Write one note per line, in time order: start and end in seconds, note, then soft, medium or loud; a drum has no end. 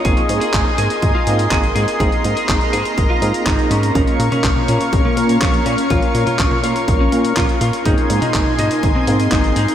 0.00 3.91 D#5 medium
0.05 0.15 G#1 loud
0.05 1.24 A#3 medium
0.05 1.24 C4 medium
0.05 1.24 D#4 medium
0.05 0.36 G#4 loud
0.05 1.24 G#4 loud
0.05 9.75 A#4 medium
0.05 1.98 G#5 medium
0.05 3.92 C6 medium
0.05 kick loud
0.05 closed hi-hat medium
0.17 closed hi-hat soft
0.29 0.40 G#2 loud
0.29 closed hi-hat medium
0.41 0.72 G#4 medium
0.41 closed hi-hat medium
0.54 0.64 G#1 medium
0.54 kick loud
0.54 clap loud
0.54 closed hi-hat medium
0.78 0.89 G#2 medium
0.78 1.09 G#4 medium
0.78 closed hi-hat medium
0.90 closed hi-hat soft
1.02 1.13 G#1 loud
1.02 kick loud
1.02 closed hi-hat medium
1.15 1.46 F4 medium
1.27 1.48 G#2 medium
1.27 1.97 A#3 loud
1.27 1.97 C4 medium
1.27 1.97 D#4 medium
1.27 1.97 G#4 loud
1.27 closed hi-hat medium
1.39 closed hi-hat soft
1.51 1.72 G#1 medium
1.51 1.72 G#4 medium
1.51 kick loud
1.51 clap loud
1.51 closed hi-hat medium
1.64 closed hi-hat soft
1.75 1.86 G#2 loud
1.75 1.96 G#4 medium
1.75 closed hi-hat medium
1.88 closed hi-hat soft
2.00 2.11 G#1 loud
2.00 3.19 A#3 medium
2.00 3.19 C4 medium
2.00 3.19 D#4 medium
2.00 2.31 G#4 medium
2.00 3.19 G#4 loud
2.00 3.93 A#5 medium
2.00 kick loud
2.00 closed hi-hat medium
2.12 closed hi-hat soft
2.24 2.35 G#2 loud
2.24 closed hi-hat medium
2.36 2.67 G#4 medium
2.36 closed hi-hat soft
2.49 2.59 G#1 medium
2.49 kick loud
2.49 clap loud
2.49 closed hi-hat medium
2.61 closed hi-hat soft
2.73 2.84 G#2 medium
2.73 3.04 G#4 medium
2.73 closed hi-hat medium
2.85 closed hi-hat soft
2.98 3.08 G#1 medium
2.98 kick loud
2.98 closed hi-hat medium
3.10 3.41 F4 medium
3.22 3.32 G#2 loud
3.22 3.92 A#3 medium
3.22 3.92 C4 medium
3.22 3.92 D#4 medium
3.22 3.92 G#4 loud
3.22 closed hi-hat medium
3.34 closed hi-hat soft
3.46 3.57 G#1 medium
3.46 3.67 D#4 medium
3.46 kick loud
3.46 clap loud
3.46 closed hi-hat medium
3.59 closed hi-hat soft
3.71 3.91 G#2 loud
3.71 3.92 C#4 medium
3.71 closed hi-hat medium
3.83 closed hi-hat medium
3.95 4.06 A#1 loud
3.95 5.14 A#3 medium
3.95 4.26 C#4 loud
3.95 5.14 C#4 medium
3.95 5.14 F4 medium
3.95 5.14 A#4 loud
3.95 7.82 C#5 medium
3.95 7.82 F5 medium
3.95 7.82 C#6 medium
3.95 kick loud
3.95 closed hi-hat medium
4.07 closed hi-hat soft
4.19 4.30 A#2 loud
4.19 closed hi-hat medium
4.32 4.63 C#4 medium
4.32 closed hi-hat soft
4.32 high tom medium
4.44 4.54 A#1 medium
4.44 kick loud
4.44 clap loud
4.44 closed hi-hat medium
4.56 high tom medium
4.68 4.79 A#2 medium
4.68 4.99 C#4 medium
4.68 closed hi-hat medium
4.81 closed hi-hat soft
4.93 5.03 A#1 loud
4.93 kick loud
4.93 closed hi-hat medium
5.05 5.36 A#3 medium
5.05 high tom medium
5.17 5.38 A#2 medium
5.17 5.88 A#3 medium
5.17 5.88 C#4 medium
5.17 5.88 F4 medium
5.17 5.88 A#4 loud
5.17 closed hi-hat medium
5.29 closed hi-hat soft
5.42 5.62 A#1 medium
5.42 5.62 C#4 medium
5.42 kick loud
5.42 clap loud
5.42 closed hi-hat medium
5.54 closed hi-hat soft
5.66 5.76 A#2 loud
5.66 5.87 C#4 medium
5.66 closed hi-hat medium
5.78 closed hi-hat medium
5.90 6.01 A#1 loud
5.90 7.09 A#3 medium
5.90 7.09 C#4 medium
5.90 7.09 F4 medium
5.90 6.21 F4 medium
5.90 7.09 A#4 loud
5.90 kick loud
5.90 closed hi-hat medium
6.02 closed hi-hat soft
6.15 6.25 A#2 medium
6.15 closed hi-hat medium
6.27 6.58 F4 medium
6.27 closed hi-hat medium
6.27 high tom medium
6.39 6.50 A#1 medium
6.39 kick loud
6.39 clap loud
6.39 closed hi-hat medium
6.51 high tom medium
6.63 6.74 A#2 medium
6.63 6.95 F4 medium
6.63 closed hi-hat medium
6.76 closed hi-hat soft
6.88 7.09 A#1 medium
6.88 kick loud
6.88 closed hi-hat medium
7.00 7.31 C#4 medium
7.12 7.33 A#2 medium
7.12 7.83 A#3 medium
7.12 7.83 C#4 medium
7.12 7.83 F4 medium
7.12 7.83 A#4 loud
7.12 closed hi-hat medium
7.25 closed hi-hat medium
7.37 7.47 A#1 medium
7.37 7.57 F4 medium
7.37 kick loud
7.37 clap loud
7.37 closed hi-hat medium
7.49 closed hi-hat soft
7.61 7.71 A#2 medium
7.61 7.82 F4 medium
7.61 closed hi-hat medium
7.73 closed hi-hat medium
7.85 7.96 G#1 medium
7.85 9.05 A#3 medium
7.85 9.05 C4 medium
7.85 8.16 D#4 loud
7.85 9.05 D#4 medium
7.85 9.05 G#4 loud
7.85 9.75 D#5 medium
7.85 9.75 G#5 medium
7.85 9.75 C6 loud
7.85 kick loud
7.85 closed hi-hat medium
7.98 closed hi-hat soft
8.10 8.20 G#2 medium
8.10 closed hi-hat medium
8.22 8.53 D#4 medium
8.22 closed hi-hat medium
8.22 high tom medium
8.34 8.45 G#1 medium
8.34 kick loud
8.34 clap loud
8.34 closed hi-hat medium
8.46 high tom medium
8.59 8.69 G#2 medium
8.59 8.90 D#4 medium
8.59 closed hi-hat medium
8.71 closed hi-hat medium
8.83 8.93 G#1 loud
8.83 kick loud
8.83 closed hi-hat medium
8.95 9.26 C4 medium
8.95 high tom medium
9.07 9.28 G#2 medium
9.07 9.75 A#3 medium
9.07 9.75 C4 medium
9.07 9.75 D#4 medium
9.07 9.75 G#4 loud
9.07 closed hi-hat medium
9.20 closed hi-hat medium
9.32 9.53 G#1 medium
9.32 9.53 D#4 medium
9.32 kick loud
9.32 clap loud
9.32 closed hi-hat medium
9.44 closed hi-hat soft
9.56 9.67 G#2 loud
9.56 9.75 D#4 medium
9.56 closed hi-hat medium
9.68 closed hi-hat medium